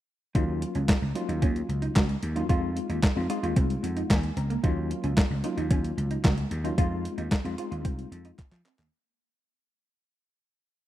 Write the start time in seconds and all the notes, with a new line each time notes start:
0.35 D#2 F#3 A#3 C#4 D#4 F4, kick, closed hi-hat
0.62 muted clean electric guitar stroke, closed hi-hat
0.75 C#2 C#4, closed hi-hat
0.88 muted clean electric guitar stroke, kick, snare, clap, closed hi-hat
1.02 C#2
1.15 F#3 A#3 C#4 D#4 F4, closed hi-hat
1.29 D#2 D#4, closed hi-hat
1.42 D#2 C#4, kick, closed hi-hat
1.56 closed hi-hat
1.69 C#2, muted clean electric guitar stroke, closed hi-hat
1.82 D#4, closed hi-hat
1.96 C#2 F#4, kick, snare, clap, closed hi-hat
2.09 muted clean electric guitar stroke, closed hi-hat
2.23 D#2, closed hi-hat
2.36 F#3 A#3 C#4 D#4 F4, closed hi-hat
2.49 F2 G#3 C4 D#4 F4, kick, closed hi-hat
2.76 muted clean electric guitar stroke, closed hi-hat
2.89 D#2 D#4, closed hi-hat
3.03 kick, snare, clap, closed hi-hat
3.16 F2 G#3 C4 D#4 F4
3.30 G#3 C4 D#4 F4 D#5, closed hi-hat
3.43 D#2 F4, closed hi-hat
3.56 C2 C4 F5, kick, closed hi-hat
3.70 closed hi-hat
3.83 F2 F#5, muted clean electric guitar stroke, closed hi-hat
3.97 D#4, closed hi-hat
4.10 D#2 G#5, kick, snare, clap, closed hi-hat
4.23 closed hi-hat
4.37 C#2 C4 A#5, closed hi-hat
4.50 A#3, closed hi-hat
4.63 D#2 F#3 A#3 C#4 D#4 F4, kick, closed hi-hat
4.90 muted clean electric guitar stroke, closed hi-hat
5.04 C#2 C#4, closed hi-hat
5.17 kick, snare, clap, closed hi-hat
5.30 C#2
5.44 F#3 A#3 C#4 D#4 F4, closed hi-hat
5.57 D#2 D#4, closed hi-hat
5.71 D#2 C#4, kick, closed hi-hat
5.84 closed hi-hat
5.97 C#2, muted clean electric guitar stroke, closed hi-hat
6.11 D#4, closed hi-hat
6.24 C#2 F#4, kick, snare, clap, closed hi-hat
6.38 muted clean electric guitar stroke, closed hi-hat
6.51 D#2, closed hi-hat
6.64 F#3 A#3 C#4 D#4 F4, closed hi-hat
6.77 F2 G#3 C4 D#4 F4, kick, closed hi-hat
7.05 muted clean electric guitar stroke, closed hi-hat
7.18 D#2 D#4, closed hi-hat
7.31 muted clean electric guitar stroke, kick, snare, clap, closed hi-hat
7.44 F2 G#3 C4 D#4 F4, closed hi-hat
7.58 G#3 C4 D#4 F4, closed hi-hat
7.71 D#2 F4, closed hi-hat
7.85 C2 C4, kick, closed hi-hat
7.99 closed hi-hat
8.12 F2, muted clean electric guitar stroke, closed hi-hat
8.25 D#4, closed hi-hat
8.38 muted clean electric guitar stroke, kick, clap, closed hi-hat
8.52 F3, clap, closed hi-hat
8.65 C4, clap, closed hi-hat
8.79 D#2 A#3, clap, closed hi-hat